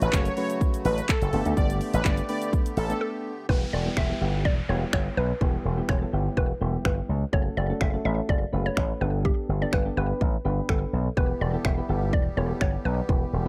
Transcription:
Already playing: C#3 F#3 A3 F#4
0.02 A1 B4, closed hi-hat, shaker
0.13 F#1 F#3 A3 C#4 F#4 A4 C#5, kick, clap, shaker
0.25 closed hi-hat, shaker
0.37 F#3 A3 C#4 F#4 B4 C#5, open hi-hat, shaker
0.50 closed hi-hat, shaker
0.61 kick, shaker
0.74 closed hi-hat, shaker
0.85 A1 B4, open hi-hat, shaker
0.98 closed hi-hat, shaker
1.09 A4, kick, clap, shaker
1.22 F#1, closed hi-hat, shaker
1.33 G1 D3 A3 B3 D4 G4 A4, open hi-hat, shaker
1.45 D2, closed hi-hat, shaker
1.57 G1 D5, kick, shaker
1.70 closed hi-hat, shaker
1.81 open hi-hat, shaker
1.94 A1 B4, closed hi-hat, shaker
2.05 G1 A3 B3 D4 G4 B4 D5, kick, clap, shaker
2.17 closed hi-hat, shaker
2.29 A3 B3 D4 G4 B4 D5, open hi-hat, shaker
2.42 closed hi-hat, shaker
2.53 kick, shaker
2.66 closed hi-hat, shaker
2.77 A1 A4, open hi-hat, shaker
2.89 A3 B3 D4 G4 A4, closed hi-hat, shaker
3.01 A4
3.49 E1 G3 B3 E4 G4 B4, kick, downlifter
3.73 E1 D5
3.85 G3 B3 E4 G4
3.97 E1 E5, finger snap, kick
4.10 G3 B3 E4 G4
4.21 G1 G3 B3 E4 G4
4.45 E1 D5, kick
4.69 E1 G3 B3 E4 G4 C#5
4.93 G1 C#5, finger snap, kick
5.17 B1 B4
5.41 E1 G3 B3 E4 G4, kick
5.65 E1
5.77 G3 B3 E4 G4
5.89 E1 C#5, finger snap, kick
6.01 G3 B3 E4 A4
6.13 G1 G3 B3 E4 G4
6.37 E1 B4, kick
6.61 E1 G3 B3 E4 G4
6.85 G1 B4, finger snap, kick
7.09 C#2
7.33 F#1 A3 C#4 F#4 A4 C#5, kick
7.57 F#1 D5
7.69 A3 C#4 F#4 A4
7.81 F#1 E5, finger snap, kick
7.93 A3 C#4 F#4 A4
8.04 A1 A3 C#4 F#4 A4 E5
8.29 F#1 D5, kick
8.52 F#1 A3 C#4 F#4 B4
8.66 C#5
8.77 A1, finger snap, kick
9.00 G1 B3 D4 G4 A4 B4
9.25 G4, kick
9.49 G1
9.61 B3 D4 G4 A4 D5
9.73 G1 B4, finger snap, kick
9.85 B3 D4 G4 A4
9.97 G1 B3 D4 G4 B4
10.21 A1, kick
10.45 G1 B3 D4 G4 B4
10.69 G1 A4, finger snap, kick
10.93 B1
11.17 E1 E3 G3 B3 E4 G4 B4, kick
11.41 E1 D5
11.53 B3 E4 G4 A4
11.65 E1 E5, finger snap, kick
11.77 B3 E4 G4 B4
11.89 G1 B3 E4 G4 A4
12.13 E1 D5, kick
12.37 E1 B3 E4 G4 A4 C#5
12.61 G1 C#5, finger snap, kick
12.85 B1 B4
13.09 E1 B3 E4 G4 B4, kick
13.33 E1

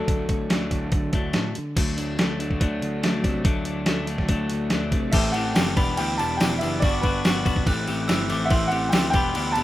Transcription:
Already playing: D3 F#3 A3 D4 F#4 A4
0.08 D2, kick, open hi-hat
0.29 D2, kick, open hi-hat
0.50 D2 D3 F#3 A3 D4 F#4, snare, open hi-hat
0.71 D2, kick, open hi-hat
0.92 D3, kick, open hi-hat
1.13 D2 F#3 A3 D4, kick, open hi-hat
1.33 A2, snare, open hi-hat
1.55 D3, open hi-hat
1.77 D2 D3 F#3 A3 D4, kick, open hi-hat, crash
1.97 F#3 A3 D4, open hi-hat
2.18 D2 F#3 A3 D4, snare, open hi-hat
2.39 A3 D4 F#4, open hi-hat
2.51 kick
2.60 D2 F#3 A3 D4, kick, open hi-hat
2.82 D2 A3, open hi-hat
3.03 D2 F#3 A3 D4, snare, open hi-hat
3.24 C3 A3 D4, kick, snare, open hi-hat
3.44 D2 D3 F#3 A3 D4, kick, open hi-hat
3.65 F#3 A3 D4, open hi-hat
3.86 D2 F#3 A3 D4, snare, open hi-hat
4.07 A3 D4 F#4, open hi-hat
4.18 kick, snare
4.28 D2 F#3 A3 D4, kick, open hi-hat
4.50 D2 A3, open hi-hat
4.70 D2 F#3 A3 D4, snare, open hi-hat
4.92 C3 A3 D4, kick, open hi-hat
5.11 A1 A2 E3 A3 E4 G4 E5 A5, kick, crash
5.16 C4
5.32 A2 G4 F#5, crash
5.36 E3 A3 C4 E4
5.54 F#1 A2 E3 A3 C4 E4 G4 G5, snare, tambourine, crash
5.77 E1 E3 G3 B3 D4 E4 G4 B5, kick, tambourine, crash
5.97 D2 E3 G3 B3 D4 E4 G4 G5, tambourine, crash
6.18 E1 E3 G3 B3 D4 E4 G4 A5, tambourine, crash
6.37 E3 G3 B3 D4 G5, snare, tambourine, crash
6.41 E1 E4 G4
6.59 E3 G3 B3 D4 E4 G4 E5, crash
6.63 F#1, tambourine
6.80 G1 G2 D3 G3 D4 D5 D6, kick, crash
6.84 B3 F#4, tambourine
7.01 G2 D3 G3 B3 D4 F#4 B4, kick, tambourine, crash
7.23 G1 G2 D3 G3 B3 D4 F#4, snare, tambourine, crash
7.44 B1 G2 D3 G3 B3 D4 F#4, kick, tambourine, crash
7.56 kick
7.65 A1 A2 E3 A3 C4 E4 G4 F#6, kick, tambourine, crash
7.87 A1 A2 E3 A3 C4 E4 G4, tambourine, crash
8.08 G1 A2 E3 A3 C4 E4 G4 E6, snare, tambourine, crash
8.29 A1 A2 E3 A3 C4 E4 G4 D6, tambourine, crash
8.45 E5 F#5
8.49 A1 A2 E3 A3 C4 E4 G4 C6, kick, tambourine, crash
8.67 A2 E3 A3 C4 E4 F#5
8.72 G4, tambourine, crash
8.89 A2 E3 A3 C4 E4 G5, snare, tambourine, crash
8.94 D2 G4
9.10 E1 E3 G3 B3 E4 G5, kick, tambourine, crash
9.14 D4 G4 B5
9.33 D2 E3 G3 B3 D4 E4 G4, tambourine, crash
9.52 E3 G3 B3 A5, tambourine, crash
9.56 E1 D4 E4 G4

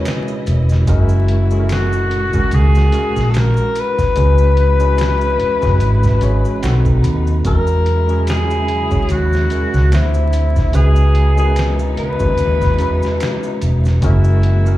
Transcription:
Already playing: C#3 G#3 B3 C#4 E4 F#4 G#4 A#4 B4 C#5 D#5
0.05 finger snap, snare, closed hi-hat, maracas
0.28 maracas
0.47 E1, closed hi-hat, maracas
0.69 snare, maracas
0.87 F#1 A#2 G#3 C#4 E4 F#4 A#4, kick, closed hi-hat, maracas
1.09 maracas
1.28 closed hi-hat
1.51 G#3 C#4 F#4 A4, maracas
1.59 A#4
1.69 F#4, finger snap, snare, closed hi-hat, maracas
1.93 maracas
2.11 closed hi-hat
2.33 G#3 C#4 F#4 A#4, kick, maracas
2.51 C#2 G#4, closed hi-hat, maracas
2.75 snare, maracas
2.92 G#3 C#4 F#4 A#4, closed hi-hat, maracas
3.16 A#1, snare, maracas
3.30 A4, closed hi-hat
3.34 A#4, finger snap, snare, maracas
3.57 maracas
3.76 closed hi-hat, maracas
3.80 B4
3.99 kick, snare, maracas
4.16 C#2 E3 G#3 C#4 E4 F#4 B4, closed hi-hat, maracas
4.38 maracas
4.57 closed hi-hat
4.80 G#3 C#4 F#4 B4, maracas
4.98 finger snap, snare, closed hi-hat, maracas
5.21 maracas
5.40 muted fingered electric bass stroke, closed hi-hat
5.61 F#1 G#3 C#4 F#4 B4, kick, snare, maracas
5.80 G#1, closed hi-hat, maracas
6.03 kick, snare, maracas
6.21 G#1 G#3 C#4 F#4 C#5 E5, closed hi-hat, maracas
6.45 maracas
6.62 B1 C3 A3 C4 D#4 F#4 A4 F#5, finger snap, snare, closed hi-hat, maracas
6.85 kick, maracas
7.04 D#2 B5, closed hi-hat, maracas
7.27 maracas
7.44 E2 C#3 F#3 G#3 C#4 E4 F#4 A#4, kick, closed hi-hat, maracas
7.67 maracas
7.86 closed hi-hat
8.08 G#3 C#4 F#4 G#4, maracas
8.27 G#4, finger snap, snare, closed hi-hat, maracas
8.51 maracas
8.68 closed hi-hat
8.90 G#3 C#4 F#4 C#5, kick, maracas
9.09 D#2 F#4, closed hi-hat, maracas
9.33 snare, maracas
9.50 G#3 C#4 F#4 A#4, closed hi-hat, maracas
9.74 C#2, snare, maracas
9.91 D2 D3 F3 A3 C4 D4 E4 G4 C5, finger snap, snare, closed hi-hat, maracas
10.14 maracas
10.33 closed hi-hat, maracas
10.56 kick, snare, maracas
10.73 C#2 C#3 G#3 B3 C#4 D#4 E4 F#4 G#4 B4, closed hi-hat, maracas
10.96 maracas
11.15 closed hi-hat
11.37 G#3 C#4 F#4 G#4 A#4, maracas
11.45 B4
11.56 finger snap, snare, closed hi-hat, maracas
11.79 maracas
11.97 B4, muted fingered electric bass stroke, closed hi-hat
12.19 D#2 G#3 C#4 F#4 B4, kick, maracas
12.38 D#2, closed hi-hat, maracas
12.61 kick, snare, maracas
12.78 E2 G#3 C#4 F#4 B4, closed hi-hat, maracas
13.02 snare, maracas
13.20 finger snap, snare, closed hi-hat, maracas
13.43 maracas
13.62 E1, closed hi-hat, maracas
13.85 snare, maracas
14.02 F#1 E3 G#3 A#3 C#4 E4 F#4 A#4, kick, closed hi-hat, maracas
14.24 maracas
14.43 closed hi-hat
14.66 G#3 C#4 F#4 A#4, maracas

